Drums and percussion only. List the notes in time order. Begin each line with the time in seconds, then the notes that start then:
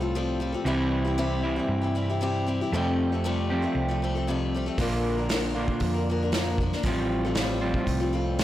4.78 kick, open hi-hat
5.29 snare, open hi-hat
5.68 kick
5.80 kick, open hi-hat
6.32 snare, open hi-hat
6.58 kick
6.72 snare
6.83 kick, open hi-hat
7.35 snare, open hi-hat
7.74 kick
7.87 kick, open hi-hat
8.39 snare, open hi-hat